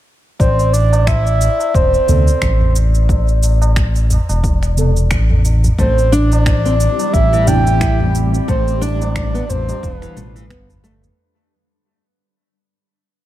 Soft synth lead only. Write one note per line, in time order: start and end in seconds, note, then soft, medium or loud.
0.40 0.75 C5 medium
0.73 1.08 D5 medium
1.07 1.76 E5 loud
1.75 2.75 C5 medium
5.79 6.14 C5 medium
6.13 7.12 D5 loud
7.13 7.49 E5 loud
7.47 8.15 G5 loud
8.49 8.84 C5 loud
8.82 9.15 D5 loud
9.16 9.51 D5 medium
9.49 9.85 C5 medium
9.83 10.84 B4 medium